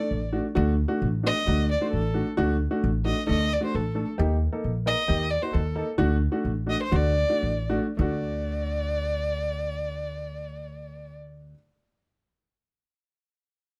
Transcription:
Already playing: D5
0.00 A3 D4 A4
0.11 A1
0.32 A3 D4 F#4
0.55 D2 A3 D4 F#4
0.88 A3 D4 F#4
1.02 A1
1.23 A3 D4 F#4 D#5
1.47 D2 A3 D4 F#4
1.71 D5
1.78 A3 D4 F#4 C5 D5
1.92 A1 A4
2.14 A3 D4 F#4
2.37 D2 A3 D4 F#4
2.71 A3 D4 F#4
2.84 A1
3.05 A3 D4 F#4 D#5
3.27 D2 A3 D4 A4 D#5
3.53 D5
3.61 A3 D4 F#4
3.65 C5
3.75 A1 A4
3.95 A3 D4 A4
4.18 D#2 A#3 D#4 G4
4.52 A#3 D#4 A4
4.64 A#1
4.86 A#3 D#4 A#4 D#5
5.08 D#2 A#3 D#4 G4
5.30 D5
5.42 A#3 D#4 F#4 C5
5.53 D#2 A4
5.75 A#3 D#4 A4
5.98 D2 A3 D4 F#4
6.32 A3 D4 F#4
6.45 A1
6.66 A3 D4 F#4 D#5
6.83 C5
6.92 D2 A3 D4 F#4 D5
7.29 A3 D4 F#4
7.43 A1
7.69 A3 D4 F#4
7.97 D2 A3 D4 D5
8.01 F#4

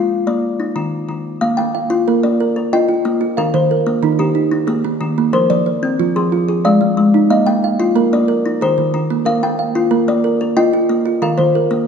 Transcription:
Already playing: F4 F5
0.27 A#3 D5
0.60 D#4
0.76 D#3
1.09 D#3
1.41 A#3 F5
1.57 A#3 G5
1.75 F5
1.90 F4
2.08 A#3 A#4
2.23 A#3 D5
2.40 A#4
2.56 A#4
2.73 F4 D#5 G5
2.89 F4
3.05 A#3
3.21 F4
3.37 D#3 A#4 F5
3.54 D#3 C5
3.71 A#4
3.86 A#3
4.03 D#3 D#4
4.19 D#3 G4
4.35 D#4
4.51 D#4
4.67 A#3 G#4
4.84 A#3
5.01 D#3
5.18 A#3
5.33 F3 A#4 C5
5.50 F3 D5
5.66 C5
5.83 C4
5.99 F3 F4
6.16 F3 G#4
6.32 F4
6.48 G#4
6.65 G#3 D5 F5
6.81 G#3
6.97 G#3
7.14 D#4
7.30 A#3 D#5 F5
7.46 A#3 G5
7.64 F5
7.80 F4
7.96 A#3 A#4
8.13 A#3 D5
8.28 A#4
8.46 D#4
8.61 D#3 G#4 C5
8.78 D#3
8.94 D#3
9.10 A#3
9.25 A#3 A#4 F5
9.43 A#3 G5
9.59 F5
9.75 F4
9.91 A#3 A#4
10.08 A#3 D5
10.24 A#4
10.41 A#4
10.57 F4 D#5 G5
10.73 F4
10.89 A#3
11.06 F4
11.22 D#3 A#4 F5
11.38 D#3 C5
11.55 A#4
11.71 A#3

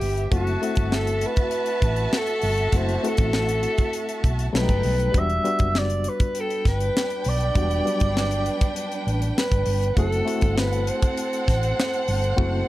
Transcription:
Already playing: F#3 G3 B3 D4 F#4 G4 E5
0.01 G1, open hi-hat
0.18 closed hi-hat
0.31 F#1 A3 C4 E4 F#4 E5 A5, kick, closed hi-hat
0.36 F#4
0.47 closed hi-hat
0.62 A3 C4 E4 F#4, closed hi-hat
0.76 G1, kick, closed hi-hat
0.92 A4, snare
1.07 closed hi-hat
1.21 closed hi-hat
1.26 B4
1.36 kick, closed hi-hat
1.51 closed hi-hat
1.66 closed hi-hat
1.82 A1, kick, closed hi-hat
1.96 closed hi-hat
2.13 snare
2.18 A4
2.27 closed hi-hat
2.42 G1, open hi-hat
2.58 closed hi-hat
2.72 F#1 A3 C4 E4 F#4, kick, closed hi-hat
2.77 C5
2.89 closed hi-hat
3.03 A3 C4 E4 F#4, closed hi-hat
3.08 A4
3.17 A1, kick, closed hi-hat
3.33 snare
3.49 closed hi-hat
3.63 closed hi-hat
3.78 kick, closed hi-hat
3.93 closed hi-hat
4.09 closed hi-hat
4.24 B1, kick, closed hi-hat
4.39 closed hi-hat
4.53 B1 F#3 G3 A3 D#4 A4 B4 G5, snare
4.69 G1, kick, closed hi-hat
4.83 B1, open hi-hat
5.00 closed hi-hat
5.12 E1 G3 B3 D4 F#4, kick, closed hi-hat
5.19 E5
5.30 closed hi-hat
5.44 G3 B3 D4 F#4, closed hi-hat
5.59 F#1, kick, closed hi-hat
5.75 D5, snare
5.90 closed hi-hat
6.04 closed hi-hat
6.09 B4
6.20 kick, closed hi-hat
6.35 D4 B4 G5, closed hi-hat
6.40 A4
6.50 closed hi-hat
6.65 G1 B4, kick, snare, closed hi-hat
6.81 closed hi-hat
6.97 snare
7.10 closed hi-hat
7.24 B1, open hi-hat
7.29 D5
7.41 closed hi-hat
7.55 E1 G3 B3 D4 F#4, kick, closed hi-hat
7.71 closed hi-hat
7.85 F#3 G3 B3 D4, closed hi-hat
8.00 G1, kick, closed hi-hat
8.17 snare
8.31 closed hi-hat
8.46 closed hi-hat
8.61 kick, closed hi-hat
8.76 closed hi-hat
8.92 closed hi-hat
9.07 A1, closed hi-hat
9.22 closed hi-hat
9.38 B4, snare
9.52 G1, kick, closed hi-hat
9.66 G1, open hi-hat
9.82 closed hi-hat
9.96 F#1 A3 C4 E4 F#4 A4 F#5, kick, closed hi-hat
10.12 closed hi-hat
10.25 A3 C4 E4 F#4, closed hi-hat
10.41 G1, kick, closed hi-hat
10.58 B4, snare
10.73 closed hi-hat
10.87 C5, closed hi-hat
11.02 kick, closed hi-hat
11.18 closed hi-hat
11.33 closed hi-hat
11.48 A1, kick, snare, closed hi-hat
11.63 closed hi-hat
11.80 snare
11.94 closed hi-hat
12.08 G1, open hi-hat
12.24 closed hi-hat
12.36 F#1 A3 C4 E4 F#4, kick

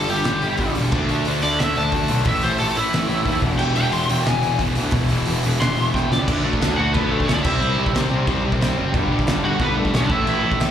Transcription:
0.09 G1 G2 D3 G3 G4, open hi-hat
0.24 G1 G2 D3 G3, snare, open hi-hat
0.42 G1 G2 D3 G3, open hi-hat
0.57 G1 G2 D3 G3, kick, open hi-hat
0.75 E1 G2 D3 G3, open hi-hat
0.92 D2 D3 A3 D4, kick, crash
1.09 D2 D3 A3 D4, open hi-hat
1.25 D2 D3 A3 D4, open hi-hat
1.42 D2 D3 A3 D4 D5, open hi-hat
1.59 D2 D3 A3 D4 E5, snare, open hi-hat
1.75 D2 D3 A3 D4 A5, open hi-hat
1.92 D2 D3 A3 D4, kick, open hi-hat
2.08 B1 D3 A3 D4, open hi-hat
2.25 A1 A2 E3 A3 E5, kick, open hi-hat
2.41 A1 A2 E3 A3 C5, open hi-hat
2.58 A1 A2 E3 A3 A4, open hi-hat
2.76 A1 A2 E3 A3 E4, open hi-hat
2.93 A1 A2 E3 A3, snare, open hi-hat
3.09 A1 A2 E3 A3, open hi-hat
3.26 D#2 A2 E3 A3, kick, open hi-hat
3.42 E1 E2 B2 E3, kick, open hi-hat
3.59 E1 E2 B2 E3 G5, crash
3.76 E1 E2 B2 E3 G5, open hi-hat
3.92 E1 E2 B2 E3 C6, open hi-hat
4.09 E1 E2 B2 E3 G5, open hi-hat
4.26 E1 E2 B2 E3 G#5, snare, open hi-hat
4.43 E1 E2 B2 E3, open hi-hat
4.59 E1 E2 B2 E3, kick, open hi-hat
4.75 D2 E2 B2 E3, open hi-hat
4.91 E1 E2 B2 E3, kick, open hi-hat
5.09 E1 E2 B2 E3, open hi-hat
5.26 E1 E2 B2 E3, open hi-hat
5.43 E1 E2 B2 E3, open hi-hat
5.61 E1 E2 B2 E3 C6, snare, open hi-hat
5.77 E1 E2 B2 E3, open hi-hat
5.94 E1 E2 B2 E3 G5, kick, snare
6.12 C#2 E2 B2 E3 D5, snare
6.28 D2 D3 A3 D4, kick, crash
6.44 D2 D3 A3 D4
6.53 kick
6.61 D2 D3 A3 D4, snare, crash
6.77 D2 D3 A3 D4 F#4 F#5
6.94 D2 D3 A3 B3 D4 B4, kick, crash
7.09 D2 D3 A3 D4 A4
7.20 kick
7.25 C#4 C#5, crash
7.29 C#2 D3 A3 D4, snare
7.34 D4 D5
7.43 C2 C3 G3 C4 E4 E5, kick, crash
7.60 C2 C3 G3 C4, crash
7.78 C2 C3 G3 C4
7.86 kick
7.94 C2 C3 G3 C4, snare, crash
8.10 C2 C3 G3 C4
8.27 C2 C3 G3 C4, kick, crash
8.45 C2 C3 G3 C4
8.52 kick
8.60 C2 C3 G3 C4, snare, crash
8.77 F#1 C3 G3 C4
8.94 G1 G2 D3 G3, kick, crash
9.11 G1 G2 D3 G3
9.19 kick
9.27 G1 G2 D3 G3, snare, crash
9.44 G1 G2 D3 G3 F#4 F#5
9.59 G1 G2 D3 G3 B3 B4, kick, crash
9.77 G1 G2 D3 G3 A3 A4
9.85 kick
9.93 B1 G2 D3 G3 C#4 C#5, snare, crash
10.02 D4 D5
10.10 A1 A2 E3 A3 E4 E5, kick
10.27 A1 A2 E3 A3, crash
10.43 A1 A2 E3 A3
10.52 kick
10.60 A1 A2 E3 A3, snare, crash

